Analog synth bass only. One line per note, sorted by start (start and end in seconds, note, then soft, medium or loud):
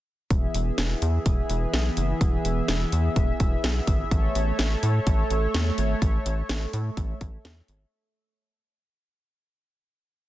0.31 0.47 E1 loud
0.54 0.71 E1 medium
0.78 0.95 E1 loud
1.02 1.19 E2 loud
1.26 1.42 E1 loud
1.50 1.66 E1 loud
1.73 1.90 B1 medium
1.97 2.14 F#1 loud
2.21 2.38 E1 loud
2.45 2.61 E1 loud
2.69 2.85 E1 loud
2.92 3.09 E2 medium
3.16 3.33 E1 loud
3.40 3.57 E1 loud
3.64 3.80 B1 medium
3.88 4.04 G#1 medium
4.11 4.28 A1 loud
4.35 4.52 A1 loud
4.59 4.76 A1 loud
4.83 5.00 A2 loud
5.07 5.23 A1 loud
5.30 5.47 A1 medium
5.54 5.71 E2 loud
5.78 5.95 G#1 medium
6.02 6.19 A1 loud
6.26 6.42 A1 medium
6.50 6.66 A1 loud
6.73 6.90 A2 loud
6.97 7.14 A1 loud
7.21 7.38 A1 loud
7.45 7.61 E2 loud
7.69 7.85 G#1 medium